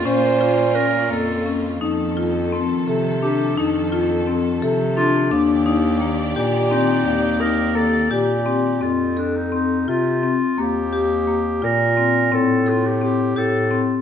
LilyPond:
<<
  \new Staff \with { instrumentName = "Clarinet" } { \time 5/8 \key f \mixolydian \tempo 4 = 86 c''4 bes'8 a'8. r16 | r2 g'8 | r2 f'8 | r2 ees'8~ |
ees'8 bes'8 a'8 g'4 | f'8 d'16 ees'16 ees'8 f'4 | g'4. bes'4 | a'8 f'16 g'16 g'8 a'8 r8 | }
  \new Staff \with { instrumentName = "Marimba" } { \time 5/8 \key f \mixolydian des'8 f'8 des'8 bes8 des'8 | ees'8 f'8 c'8 a'8 d'8 | ees'8 f'8 c'8 a'8 d'8 | d'8 ees'8 bes8 g'8 c'8 |
d''8 ees'8 bes8 g'8 c'8 | c'8 a'8 c'8 f'8 c'8 | bes8 g'8 bes8 f'8 c'8 | c'8 a'8 c'8 g'8 c'8 | }
  \new Staff \with { instrumentName = "String section" } { \time 5/8 \key f \mixolydian <bes des' f'>2~ <bes des' f'>8 | <ees f a'>2~ <ees f a'>8~ | <ees f a'>2~ <ees f a'>8 | <ees g' d''>2~ <ees g' d''>8~ |
<ees g' d''>2~ <ees g' d''>8 | r2 r8 | r2 r8 | r2 r8 | }
  \new Staff \with { instrumentName = "Bass clarinet" } { \clef bass \time 5/8 \key f \mixolydian bes,4. f,4 | f,4. c4 | f,4. c4 | ees,4. bes,4 |
ees,4. bes,4 | f,4. c4 | ees,4. bes,4 | a,4. a,4 | }
>>